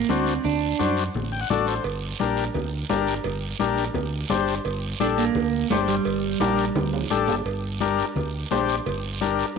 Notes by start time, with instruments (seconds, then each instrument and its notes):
0.09 fingered electric bass D2, clean electric guitar C4, transistor combo organ D4 F#4 C5, high conga, short guiro
0.26 short guiro
0.44 fingered electric bass D2, clean electric guitar D4, high conga, low conga, long guiro
0.79 fingered electric bass F#2, transistor combo organ D4 F#4 C5, high conga, short guiro
0.97 short guiro
1.14 fingered electric bass A1, high conga, low conga, long guiro
1.32 transistor combo organ G5
1.41 transistor combo organ F#5
1.50 fingered electric bass A1, transistor combo organ D4 F#4 A4 D5, high conga, low conga, short guiro
1.67 transistor combo organ C5, short guiro
1.84 fingered electric bass G1, cowbell, high conga, long guiro
2.19 fingered electric bass A#1, transistor combo organ D4 G4 A#4, cowbell, high conga, short guiro
2.37 short guiro
2.54 fingered electric bass D2, cowbell, high conga, low conga, long guiro
2.89 fingered electric bass G1, transistor combo organ D4 G4 A#4, cowbell, high conga, low timbale, short guiro
3.07 short guiro
3.24 fingered electric bass G1, cowbell, high conga, low conga, long guiro
3.59 fingered electric bass A#1, transistor combo organ D4 G4 A#4, cowbell, high conga, short guiro
3.78 short guiro
3.94 fingered electric bass D2, cowbell, high conga, low conga, long guiro
4.30 fingered electric bass G1, transistor combo organ D4 G4 C5, cowbell, high conga, low conga, low timbale, short guiro
4.48 short guiro
4.65 fingered electric bass G1, cowbell, high conga, long guiro
5.00 fingered electric bass A#1, transistor combo organ D4 G4 A4, clean electric guitar D4, cowbell, high conga, short guiro
5.18 clean electric guitar A#3, short guiro
5.35 fingered electric bass D2, cowbell, high conga, low conga, long guiro
5.70 fingered electric bass G1, clean electric guitar A3, transistor combo organ D4 G4 C5, cowbell, high conga, low timbale, short guiro
5.88 clean electric guitar G3, short guiro
6.05 fingered electric bass G1, cowbell, high conga, long guiro
6.40 fingered electric bass A#1, transistor combo organ D4 G4 A#4, cowbell, high conga, high timbale, short guiro
6.58 short guiro
6.75 fingered electric bass D2, cowbell, high conga, low conga, high timbale, long guiro
6.93 low timbale
7.10 fingered electric bass A1, transistor combo organ D4 G4 A4, cowbell, high conga, short guiro
7.28 fingered electric bass G1, low timbale, short guiro
7.45 fingered electric bass G1, cowbell, high conga, long guiro
7.80 transistor combo organ D4 G4 A#4, cowbell, high conga, short guiro
7.98 short guiro
8.15 fingered electric bass D2, cowbell, high conga, low conga, long guiro
8.51 fingered electric bass A#1, transistor combo organ D4 G4 C5, cowbell, high conga, low timbale, short guiro
8.69 short guiro
8.86 fingered electric bass G1, cowbell, high conga, low conga, long guiro
9.21 transistor combo organ D4 G4 A#4, cowbell, high conga, short guiro
9.39 short guiro